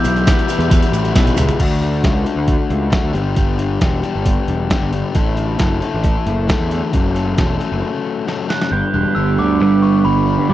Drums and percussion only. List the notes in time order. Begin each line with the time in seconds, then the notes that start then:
0.04 closed hi-hat, shaker
0.16 closed hi-hat, shaker
0.27 kick, snare, closed hi-hat, shaker
0.39 closed hi-hat
0.49 closed hi-hat, shaker
0.60 closed hi-hat, shaker
0.71 kick, closed hi-hat, shaker
0.83 closed hi-hat
0.93 closed hi-hat, shaker
1.05 closed hi-hat, shaker
1.15 kick, snare, closed hi-hat, shaker
1.27 closed hi-hat, high tom
1.37 closed hi-hat, mid tom, shaker
1.49 closed hi-hat, floor tom, shaker
1.60 kick, closed hi-hat, crash
1.82 closed hi-hat
2.04 kick, snare, closed hi-hat
2.26 closed hi-hat
2.48 kick, closed hi-hat
2.70 closed hi-hat
2.92 kick, snare, closed hi-hat
3.15 closed hi-hat
3.36 kick, closed hi-hat
3.59 closed hi-hat
3.81 kick, snare, closed hi-hat
4.03 closed hi-hat
4.26 kick, closed hi-hat
4.48 closed hi-hat
4.70 kick, snare, closed hi-hat
4.93 closed hi-hat
5.15 kick, closed hi-hat
5.37 closed hi-hat
5.59 kick, snare, closed hi-hat
5.82 closed hi-hat
6.04 kick, closed hi-hat
6.27 closed hi-hat
6.49 kick, snare, closed hi-hat
6.71 closed hi-hat
6.93 kick, closed hi-hat
7.16 closed hi-hat
7.38 kick, snare, closed hi-hat
7.61 closed hi-hat
8.28 snare
8.50 snare
8.62 snare